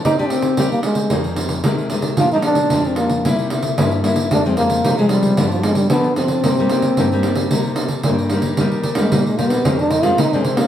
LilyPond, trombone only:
\new Staff \with { instrumentName = "Trombone" } { \time 4/4 \key c \minor \tempo 4 = 112 ees'16 d'16 c'8. bes16 aes8. r4. r16 | f'16 ees'16 d'8. c'16 bes8. r4. r16 | d'16 c'16 bes8. aes16 g8. f16 aes16 g16 b8 c'8~ | c'2. r4 |
\key ees \major r8. aes16 g16 aes16 bes16 ces'16 c'16 d'16 ees'16 f'16 ees'16 d'16 c'16 bes16 | }